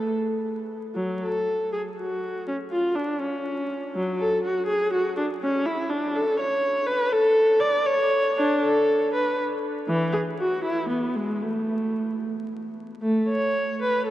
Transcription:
Already playing: A4
0.95 F#3
1.22 A4
1.72 G#4
1.97 F#4
2.48 C#4
2.72 F4
2.95 D4
3.20 C#4
3.95 F#3
4.20 A4
4.44 F#4
4.67 G#4
4.94 F#4
5.17 D4
5.43 C#4
5.66 E4
5.90 D4
6.16 A4
6.40 C#5
6.87 B4
7.12 A4
7.60 D5
7.86 C#5
8.38 D4
8.64 A4
9.15 B4
9.88 E3
10.12 G#4
10.39 F#4
10.65 E4
10.90 B3
11.16 G#3
11.42 A3
13.02 A3
13.29 C#5
13.83 B4
14.06 A4

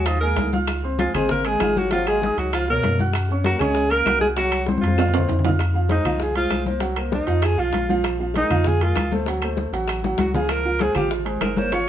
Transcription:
Already playing: D#2
0.05 F3 D#4 F4 D#5 D#6, high bongo, high conga, high timbale, claves, maracas
0.20 G#3 A#3 G#4 A#4 G#5, high bongo, high conga, maracas
0.36 C#2, high bongo, low bongo, high conga, high timbale, low timbale, maracas
0.52 F4 F5 F6, high bongo, high conga, maracas
0.67 high bongo, high conga, high timbale, claves, maracas
0.83 C4 C5 C6, high bongo, high conga, maracas
0.99 F3 G#3 F4 G#4 G#5, high bongo, high conga, high timbale, maracas
1.14 G#1 G#3 C4 G#4 C5 C6, high bongo, high conga, low conga, high timbale, claves, maracas
1.29 A#3 A#4, high bongo, high conga, low conga, maracas
1.45 G#3 G#4 G#5, high conga, high timbale, maracas
1.60 G#1 F4 F5 F6, high bongo, low bongo, high conga, high timbale, low timbale, claves, maracas
1.75 F#3 F#4, high bongo, high conga, maracas
1.91 F3 F#3 F4 F#4 F#5, high bongo, high conga, high timbale, maracas
2.06 G#3 G#4, high bongo, high conga, high timbale, claves, maracas
2.22 D#4 D#5 D#6, high bongo, high conga, maracas
2.37 C#2 F#3 F#4, high conga, high timbale, maracas
2.53 F3 F4 F5 F6, high bongo, high conga, high timbale, claves, maracas
2.68 B2 A#3 A#4 C#5, high bongo, high conga, maracas
2.83 F#2, high bongo, low bongo, high conga, high timbale, maracas
2.99 F#4 F#5 F#6, high bongo, high conga, maracas
3.13 high bongo, high conga, high timbale, claves, maracas
3.29 C#4 C#5 C#6, high bongo, high conga, maracas
3.44 F#3 A#3 F#4 A#4 A#5, high bongo, high conga, high timbale, maracas
3.59 C#2 G#3 C#4 G#4 C#5 C#6, high bongo, high conga, low conga, high timbale, claves, maracas
3.75 high bongo, high conga, maracas
3.90 A#3 A#4 A#5, high conga, high timbale, maracas
4.06 C2 F#4 F#5 F#6, high bongo, low bongo, high conga, high timbale, low timbale, claves, maracas
4.19 G#3 G#4, high bongo, high conga, maracas
4.37 F#3 F#4 F#5, high bongo, high conga, high timbale, maracas
4.52 high bongo, high conga, high timbale, claves, maracas
4.66 C4 C5 C6, high bongo, high conga, maracas
4.78 F3 F4, high conga
4.82 F2, high timbale, maracas
4.87 high bongo, high conga
4.98 F4 F5 F6, high bongo, high timbale, claves, maracas
5.08 low conga
5.14 C4 C5 C6, high timbale, maracas
5.18 low conga
5.29 F2, low bongo, low conga, low timbale, maracas
5.39 low bongo, low conga
5.44 F4 F5 F6, low timbale, maracas
5.49 low bongo, low conga
5.59 high bongo, high timbale, claves, maracas
5.74 F3 F4 F5, high bongo, high conga, maracas
5.89 G#3 D#4 G#4 C5, high bongo, high conga, high timbale, maracas
6.04 C2 F3 F4 F5, high bongo, high conga, low conga, high timbale, claves, maracas
6.20 G#4, high bongo, high conga, maracas
6.35 G#3 F4 G#4 C5, high conga, high timbale, maracas
6.50 C2, high bongo, low bongo, high conga, high timbale, claves, maracas
6.66 A#3 A#4 C5, high bongo, high conga, maracas
6.80 F#3 F#4 F#5, high bongo, high conga, high timbale, maracas
6.96 A#3 A#4 C5, high bongo, high conga, high timbale, claves, maracas
7.12 D#4, high bongo, high conga, maracas
7.27 F2 F3 F4 F5, high conga, high timbale, maracas
7.42 G#4, high bongo, high conga, high timbale, claves, maracas
7.57 B1 F3 F4 F5, high bongo, high conga, maracas
7.73 A#1, high bongo, low bongo, high conga, high timbale, maracas
7.88 F3 F4 F5, high bongo, high conga, maracas
8.04 high bongo, high conga, high timbale, claves, maracas
8.19 F3 F4 F5, high bongo, high conga, maracas
8.34 G#3 D#4 G#4 A#4, high bongo, high conga, high timbale, maracas
8.50 F2 F3 F4 F5, high bongo, high conga, low conga, high timbale, claves, maracas
8.64 G#4, high bongo, high conga, low conga, maracas
8.81 G#3 F4 G#4 A#4, high conga, high timbale, maracas
8.96 D2, high bongo, low bongo, high conga, high timbale, claves, maracas
9.11 A3 A4 C5, high bongo, high conga, maracas
9.26 F#3 F#4 F#5, high bongo, high conga, high timbale, maracas
9.42 A3 A4 C5, high bongo, high conga, high timbale, claves, maracas
9.57 high bongo, high conga, maracas
9.72 A1 F#3 F#4 F#5, high conga, high timbale, maracas
9.88 high bongo, high conga, high timbale, claves, maracas
10.03 F#3 F#4 F#5, high bongo, high conga, maracas
10.18 C#2 F#4, high bongo, low bongo, high conga, high timbale, maracas
10.34 F3 F4 G#4 F5, high bongo, low conga, maracas
10.49 A#4, high bongo, high conga, high timbale, claves, maracas
10.65 F3 F4 F5, high bongo, high conga, maracas
10.79 G#3 G#4 C5, high bongo, high conga, high timbale, maracas
10.95 G#1 F3 F4 G4 F5, high bongo, high conga, low conga, high timbale, claves, maracas
11.11 high bongo, high conga, maracas
11.25 G#3 G#4 C5, high conga, high timbale, maracas
11.41 G1 A#4, high bongo, low bongo, high conga, high timbale, low timbale, claves, maracas
11.57 A#3 A#4 C5 C#5, high bongo, high conga, maracas
11.72 F3 F4 C#5 F5, high bongo, high conga, high timbale, maracas

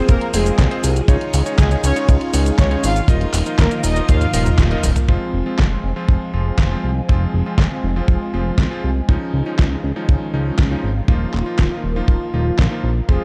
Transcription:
Already playing: F3 G#3 A#3 C4 F4 G#4 C5
0.09 F1 A#3 A#4, kick, closed hi-hat, cabasa
0.21 closed hi-hat
0.34 F1 G#3 C4 F4 G#4 C5, open hi-hat, cabasa
0.46 closed hi-hat, cabasa
0.59 C2, kick, snare, clap, closed hi-hat, cabasa
0.71 C4 F4 G#4 C5, closed hi-hat
0.84 C2, open hi-hat, cabasa
0.96 closed hi-hat, cabasa
1.08 C#2 D#3 G#3 C#4 D#4 F4 G#4 C#5, kick, closed hi-hat, cabasa
1.21 closed hi-hat
1.34 C#2, open hi-hat, cabasa
1.46 D#4 F4 G#4 C#5, closed hi-hat, cabasa
1.58 C#2 G#3 G#4, kick, snare, clap, closed hi-hat, cabasa
1.71 D#4 F4 G#4 C#5, closed hi-hat, cabasa
1.84 C#2 C#4 C#5, open hi-hat, cabasa
1.96 D#4 F4 G#4 C#5, closed hi-hat, cabasa
2.09 C#2, kick, closed hi-hat, cabasa
2.21 closed hi-hat
2.33 C#2 D#4 F4 G#4 C#5, open hi-hat, cabasa
2.46 closed hi-hat, cabasa
2.59 C#2 C#4 C#5, kick, snare, clap, closed hi-hat, cabasa
2.71 D#4 F4 G#4 C#5, closed hi-hat
2.84 G#1 F4 F5, open hi-hat, cabasa
2.96 closed hi-hat, cabasa
3.08 D#1 F3 A#3 D#4 F4 A#4 D#5, kick, closed hi-hat, cabasa
3.21 closed hi-hat
3.34 D#1, clap, open hi-hat, cabasa
3.46 D#4 F4 A#4 D#5, closed hi-hat, cabasa
3.59 D#1 A#3 A#4, kick, snare, clap, closed hi-hat, cabasa
3.71 D#4 F4 A#4 D#5, snare, closed hi-hat, cabasa
3.83 D#1 D#4 D#5, open hi-hat, cabasa
3.96 D#4 F4 A#4 D#5, closed hi-hat, cabasa
4.09 D#2 F4 F5, kick, closed hi-hat, high tom, cabasa
4.21 closed hi-hat, high tom, cabasa
4.33 D#1 D#4 F4 A#4 D#5, open hi-hat, cabasa
4.46 closed hi-hat, mid tom, cabasa
4.58 D#1, kick, snare, clap, closed hi-hat, mid tom, cabasa
4.71 D#4 F4 A#4 D#5, closed hi-hat
4.83 D#1, mid tom, open hi-hat, cabasa
4.96 closed hi-hat, mid tom, cabasa
5.08 F1 F3 G#3 C4 F4 G#4, kick
5.34 F1
5.46 F3 G#3 C4 F4
5.59 F1, kick, snare, clap
5.71 F3 G#3 C4 F4
5.84 F1
5.96 F3 G#3 C4 F4
6.09 F1, kick
6.34 F1 F3 G#3 C4 F4
6.58 F1, kick, snare, clap
6.71 F3 G#3 C4 F4
6.84 C2
7.08 F1 F3 G#3 C4 F4, kick
7.34 F1
7.46 F3 G#3 C4 F4
7.58 F1, kick, snare, clap
7.71 F3 G#3 C4 F4, snare
7.84 F1
7.96 F3 G#3 C4 F4
8.08 F1, kick
8.34 F1 F3 G#3 C4 F4
8.58 C2, kick, snare, clap
8.71 F3 G#3 C4 F4
8.84 C2
9.09 C#2 D#3 F3 G#3 C#4 D#4 F4, kick
9.34 C#2
9.46 F3 G#3 C#4 D#4
9.59 C#2, kick, snare, clap
9.71 F3 G#3 C#4 D#4
9.84 C#2
9.96 F3 G#3 C#4 D#4
10.09 C#2, kick
10.34 C#2 F3 G#3 C#4 D#4
10.59 C#2, kick, snare, clap
10.71 F3 G#3 C#4 D#4
10.84 G#1
11.08 D#1 F3 A#3 D#4 F4, kick
11.34 D#1, clap
11.46 F3 A#3 D#4 F4
11.59 D#1, kick, snare, clap
11.71 F3 A#3 D#4 F4, snare
11.84 D#1
11.96 F3 A#3 D#4 F4
12.08 D#1, kick
12.34 D#1 F3 A#3 D#4 F4
12.59 A#1, kick, snare, clap
12.71 F3 A#3 D#4 F4
12.84 A#1
13.09 F1 F3 G#3 C4 F4 G#4, kick

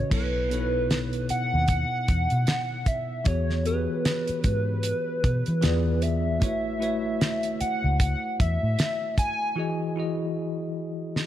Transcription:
Already playing: C#3 C#4 F#4 B4 C#5 D#5
0.10 B1 B2 B3 E4 A4 B4 C#5, kick, crash
0.49 B2 B3 D#4 A4 C#5, closed hi-hat
0.58 E4
0.91 snare, closed hi-hat
1.13 closed hi-hat
1.29 F#5, muted fingered electric bass stroke, closed hi-hat
1.54 D#2
1.68 kick, closed hi-hat
2.08 E2, kick, closed hi-hat
2.30 B2, closed hi-hat
2.47 snare, closed hi-hat
2.86 E5, kick, closed hi-hat
3.24 E2 E3 B3 F#4 G#4 C#5, kick, closed hi-hat
3.50 snare
3.64 E3 B3 F#4 G4 B4, closed hi-hat
3.68 C#5
3.74 G#4
4.05 snare, closed hi-hat
4.27 muted fingered electric bass stroke, closed hi-hat
4.44 G#2, kick, closed hi-hat
4.83 closed hi-hat
5.24 B2, kick, closed hi-hat
5.46 E3, closed hi-hat
5.61 E2 E3 B3 F4 G#4 D5, snare, closed hi-hat
6.02 E5, closed hi-hat
6.40 A1 A3 E4 F#4 B4 C#5, kick, closed hi-hat
6.79 A3 E4 F#4 B4 C#5, closed hi-hat
7.21 snare, closed hi-hat
7.43 closed hi-hat
7.61 F#5, muted fingered electric bass stroke, closed hi-hat
7.84 C#2
8.00 F#5, kick, closed hi-hat
8.40 E2 E5, kick, closed hi-hat
8.63 A2
8.79 snare, closed hi-hat
9.18 G#5, kick, closed hi-hat
9.56 E3 E4 F#4 G#4 D#5
9.96 E3 E4 F#4 G#4
10.00 D#5
11.16 snare

